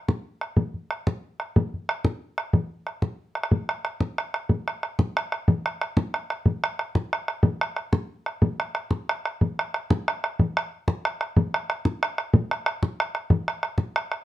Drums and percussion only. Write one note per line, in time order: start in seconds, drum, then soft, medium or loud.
0.08 bodhran medium
0.41 bodhran medium
0.57 bodhran medium
0.74 bodhran soft
0.91 bodhran medium
1.07 bodhran medium
1.40 bodhran medium
1.56 bodhran medium
1.74 bodhran soft
1.89 bodhran medium
2.05 bodhran medium
2.38 bodhran medium
2.53 bodhran medium
2.87 bodhran soft
3.02 bodhran medium
3.35 bodhran medium
3.43 bodhran medium
3.51 bodhran medium
3.69 bodhran medium
3.85 bodhran medium
4.00 bodhran medium
4.18 bodhran medium
4.34 bodhran medium
4.49 bodhran medium
4.68 bodhran medium
4.83 bodhran medium
4.99 bodhran medium
5.17 bodhran medium
5.32 bodhran medium
5.48 bodhran medium
5.66 bodhran medium
5.81 bodhran medium
5.97 bodhran medium
6.14 bodhran medium
6.30 bodhran medium
6.46 bodhran medium
6.64 bodhran medium
6.79 bodhran medium
6.95 bodhran medium
7.13 bodhran medium
7.28 bodhran medium
7.43 bodhran medium
7.61 bodhran medium
7.76 bodhran medium
7.93 bodhran medium
8.26 bodhran medium
8.42 bodhran medium
8.60 bodhran medium
8.75 bodhran medium
8.91 bodhran medium
9.09 bodhran medium
9.25 bodhran medium
9.41 bodhran medium
9.59 bodhran medium
9.74 bodhran medium
9.90 bodhran medium
10.08 bodhran medium
10.24 bodhran medium
10.39 bodhran medium
10.57 bodhran medium
10.88 bodhran medium
11.05 bodhran medium
11.21 bodhran medium
11.37 bodhran medium
11.54 bodhran medium
11.70 bodhran medium
11.85 bodhran medium
12.03 bodhran medium
12.18 bodhran medium
12.34 bodhran medium
12.51 bodhran medium
12.66 bodhran medium
12.83 bodhran medium
13.00 bodhran medium
13.15 bodhran medium
13.30 bodhran medium
13.48 bodhran medium
13.63 bodhran medium
13.78 bodhran medium
13.96 bodhran medium
14.12 bodhran medium